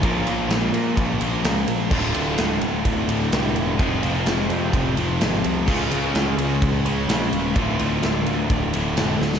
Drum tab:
CC |----------------|x---------------|----------------|x---------------|
RD |x-x-x-x-x-x-x-x-|--x-x-x-x-x-x-x-|x-x-x-x-x-x-x-x-|--x-x-x-x-x-x-x-|
SD |----o-------o---|----o-------o---|----o-------oo--|----o-------o---|
BD |o-------o-------|o-------o-------|o-------o-------|o-------o-------|

CC |----------------|
RD |x-x-x-x-x-x-x---|
SD |----o-------o-oo|
BD |o-------o-------|